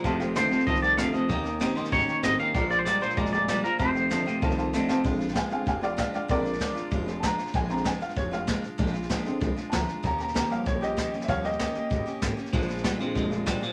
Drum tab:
HH |----p-------p---|----p-------p---|----p-------p---|----p-------p---|
SD |o-o-o-ooooo-o-o-|o-o-o-ooooo-o-o-|o-o-o-ooooo-o-o-|o-o-o-o-ooo-o-o-|
BD |o-------o-------|o-------o-------|o-------o-------|o-------o-------|

HH |----p-------p---|----p-------p---|----p-------p---|----p-------p---|
SD |o-ooo-o-o-o-o-o-|o-ooo-o-o-o-o-oo|o-ooo-ooo-o-o-o-|ooooo-o-o-o-o-o-|
BD |o---o---o---o---|o---o---o---o---|o---o---o---o---|o---o---o---o---|

HH |----p-------p---|----p-------p---|----p-------p---|
SD |o-ooo-o-o-o-o-oo|o-ooo-o-o-o-o-oo|ooooo-o-o-o-o-o-|
BD |o---o---o---o---|o---o---o---o---|o---o---o---o---|